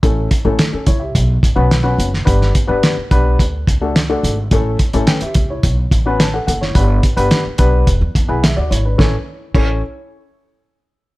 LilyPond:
<<
  \new Staff \with { instrumentName = "Upright piano" } { \time 4/4 \key a \mixolydian \tempo 4 = 107 << { r4 r16 <cis' a'>16 <e' cis''>16 <g' e''>8 r4. r16 | r1 | r4 <b' g''>16 <g' e''>8 <e' cis''>8 r8. <cis'' a''>16 <a' fis''>16 <a' fis''>16 <e' cis''>16~ | <e' cis''>16 r2 r8. e''16 <fis' d''>16 <e' cis''>16 <d' b'>16~ |
<d' b'>16 r2. r8. | } \\ { <a cis' e' a'>8 r16 <a cis' e' a'>8 r4. <b cis' fis' b'>16 r16 <b cis' fis' b'>8 r16 | <b d' g' b'>8 r16 <b d' g' b'>8 r16 <b d' g' b'>8 r8. <a d' fis' a'>16 r16 <a d' fis' a'>8 r16 | <a cis' e' a'>8 r16 <a cis' e' a'>8 r4. <b cis' fis' b'>16 r4 | <b d' g' b'>8 r16 <b d' g' b'>8 r16 <b d' g' b'>8 r8. <b e' gis' b'>16 r4 |
<cis' e' a' cis''>16 r8. <cis' e' a' cis''>8 r2 r8 | } >> }
  \new Staff \with { instrumentName = "Upright bass" } { \clef bass \time 4/4 \key a \mixolydian a,,8 r16 a,,16 r8 cis,8 b,,8 a,,16 b,,8. fis,,8 | g,,8 r16 g,,16 r8 b,,8 d,8 cis,4 gis,,8 | a,,8 r16 a,,16 r8 cis,8 b,,8 a,,4 fis,,8 | g,,8 r16 g,,16 r8 b,,8 e,,16 e,16 e,16 b,,8 d,16 gis,,8 |
a,,16 r8. a,,8 r2 r8 | }
  \new DrumStaff \with { instrumentName = "Drums" } \drummode { \time 4/4 <hh bd>8 <hh bd>8 <hh sn>8 <hh bd>8 <hh bd>8 <hh bd>8 <hh sn>8 hh16 sn16 | <hh bd>16 sn16 <hh bd>8 <hh sn>8 <hh bd>8 <hh bd>8 <hh bd>8 <hh sn>8 hh8 | <hh bd>8 <hh bd>16 hh16 <hh sn>16 hh16 <hh bd>8 <hh bd>8 <hh bd>8 <hh sn>8 hh16 sn16 | <hh bd>8 <hh bd>16 hh16 <hh sn>8 <hh bd>8 <hh bd>8 <hh bd>8 <hh sn>8 hh8 |
<bd sn>4 <cymc bd>4 r4 r4 | }
>>